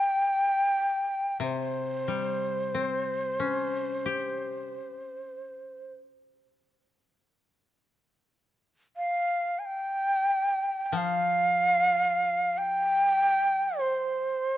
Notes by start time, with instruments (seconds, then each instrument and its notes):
Already playing: shakuhachi G5
1.40 koto C3, shakuhachi C5
2.08 koto G3
2.75 koto C4
3.40 koto C#4
4.06 koto G4
8.97 shakuhachi F5
9.59 shakuhachi G#5
9.65 shakuhachi G5
10.86 shakuhachi G5
10.92 koto F3
10.97 shakuhachi F5
12.58 shakuhachi G5
13.79 shakuhachi C5